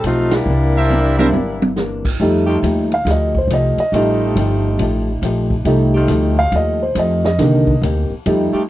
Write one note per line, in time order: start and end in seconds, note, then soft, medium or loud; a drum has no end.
0.04 0.44 B1 medium
0.04 0.34 F3 medium
0.04 0.33 A3 medium
0.04 0.35 A3 medium
0.04 0.33 C4 medium
0.04 0.33 D#4 medium
0.04 0.35 D#4 medium
0.04 0.33 F4 medium
0.04 0.35 G4 medium
0.04 hi-hat pedal soft
0.04 ride medium
0.31 1.78 G3 medium
0.31 1.78 A#3 medium
0.31 1.78 D4 medium
0.31 1.78 E4 medium
0.31 snare medium
0.31 ride medium
0.46 1.29 C2 medium
0.46 0.77 C3 soft
0.46 0.78 E3 soft
0.50 0.78 A#3 medium
0.50 0.79 D4 medium
0.76 1.16 D4 medium
0.76 1.16 A#4 medium
0.76 1.16 C5 medium
0.76 1.16 E5 loud
0.90 1.20 C3 medium
0.90 1.20 E3 medium
0.90 1.21 A#3 medium
0.90 1.21 D4 medium
0.90 hi-hat pedal medium
0.90 high tom soft
1.18 1.33 G3 medium
1.18 1.33 A#3 medium
1.18 1.33 C4 medium
1.18 1.28 D4 medium
1.18 1.33 D4 medium
1.18 1.33 E4 medium
1.18 1.28 A#4 medium
1.18 1.29 C5 medium
1.18 1.28 E5 medium
1.18 high tom medium
1.32 2.15 G1 medium
1.32 1.64 C3 medium
1.32 1.64 E3 soft
1.32 1.64 A#3 medium
1.32 high tom medium
1.37 1.65 D4 medium
1.62 high tom medium
1.76 2.07 C3 medium
1.76 2.07 E3 medium
1.76 2.08 A#3 medium
1.76 2.07 D4 medium
1.76 snare medium
1.76 hi-hat pedal soft
2.05 kick medium
2.05 crash medium
2.20 2.62 F2 medium
2.20 2.50 F3 medium
2.20 2.88 G3 soft
2.20 2.50 A3 medium
2.20 2.89 A3 soft
2.20 2.89 D#4 soft
2.20 2.51 D#4 medium
2.20 2.51 G4 medium
2.45 2.57 F3 medium
2.45 2.57 A3 medium
2.45 2.57 D#4 medium
2.45 2.57 G4 loud
2.63 3.04 D#2 medium
2.63 2.93 F3 medium
2.63 2.93 A3 medium
2.63 2.94 D#4 medium
2.63 2.94 G4 medium
2.63 hi-hat pedal medium
2.63 ride medium
2.92 3.07 F5 medium
2.92 ride soft
3.05 3.47 D2 medium
3.05 3.36 F3 soft
3.05 3.37 A3 soft
3.05 3.37 D#4 soft
3.05 snare soft
3.05 ride medium
3.09 3.38 G4 soft
3.09 3.36 D#5 medium
3.35 3.51 C5 medium
3.35 kick medium
3.47 3.75 C2 medium
3.47 3.80 F3 medium
3.47 hi-hat pedal medium
3.47 ride medium
3.52 3.80 A3 medium
3.52 3.80 D#4 medium
3.52 3.81 G4 medium
3.52 3.79 D#5 medium
3.77 4.33 D#5 medium
3.77 muted upright bass stroke soft
3.77 ride medium
3.92 4.34 A1 medium
3.92 5.13 F3 medium
3.92 4.24 F3 soft
3.92 5.63 G3 soft
3.92 5.14 A3 medium
3.92 5.63 A3 soft
3.92 4.24 A3 medium
3.92 5.13 D#4 medium
3.92 5.63 D#4 medium
3.92 5.13 G4 medium
3.92 ride medium
3.97 4.25 D#4 medium
3.97 4.25 G4 medium
4.36 4.78 G1 medium
4.36 4.66 F3 medium
4.36 4.67 A3 medium
4.36 4.67 D#4 medium
4.36 4.67 G4 medium
4.36 hi-hat pedal medium
4.36 ride medium
4.79 5.21 A1 medium
4.79 5.10 F3 soft
4.79 5.10 A3 medium
4.79 5.10 D#4 medium
4.79 5.11 G4 medium
4.79 ride medium
5.22 5.64 A#1 medium
5.22 5.53 F3 medium
5.22 5.54 A3 medium
5.22 5.54 D#4 medium
5.22 5.54 G4 medium
5.22 hi-hat pedal medium
5.22 ride medium
5.50 kick medium
5.65 6.07 C2 medium
5.65 5.96 F3 medium
5.65 6.34 G3 soft
5.65 6.34 A3 soft
5.65 5.96 A3 medium
5.65 6.34 D#4 medium
5.65 5.97 D#4 medium
5.65 5.97 G4 medium
5.65 ride medium
5.94 6.49 F3 medium
5.94 6.49 A3 medium
5.94 6.50 D#4 medium
5.94 6.49 G4 medium
6.08 6.51 D2 medium
6.08 6.40 F3 medium
6.08 6.40 A3 medium
6.08 6.40 D#4 medium
6.08 hi-hat pedal medium
6.08 ride medium
6.12 6.41 G4 medium
6.39 6.53 F5 medium
6.52 6.94 D#2 medium
6.52 6.83 F3 soft
6.52 6.83 A3 medium
6.52 6.83 D#4 medium
6.52 ride medium
6.56 6.84 G4 soft
6.56 6.82 D#5 medium
6.83 6.96 C5 medium
6.95 7.38 F2 medium
6.95 7.26 F3 medium
6.95 7.27 A3 medium
6.95 7.27 D#4 medium
6.95 7.27 G4 medium
6.95 hi-hat pedal medium
6.95 ride medium
6.99 7.24 D#5 medium
7.24 7.79 D#5 medium
7.24 snare medium
7.38 7.81 C2 medium
7.38 7.70 C3 medium
7.38 7.72 D3 soft
7.38 7.72 D#3 soft
7.38 7.72 A#3 soft
7.38 7.70 A#3 medium
7.38 snare soft
7.38 ride medium
7.43 7.71 D#4 medium
7.43 7.71 G4 medium
7.67 kick medium
7.82 8.08 D2 medium
7.82 8.13 C3 medium
7.82 8.13 A#3 medium
7.82 8.13 D#4 medium
7.82 8.13 G4 medium
7.82 hi-hat pedal soft
7.82 ride medium
8.10 muted upright bass stroke soft
8.26 8.52 F2 medium
8.26 8.56 F3 medium
8.26 8.58 G3 soft
8.26 8.59 A3 soft
8.26 8.57 A3 medium
8.26 8.59 D#4 medium
8.26 8.57 D#4 medium
8.26 8.57 G4 medium
8.26 ride medium
8.52 8.63 F3 medium
8.52 8.63 A3 medium
8.52 8.64 D#4 medium
8.52 8.63 G4 medium
8.52 muted upright bass stroke soft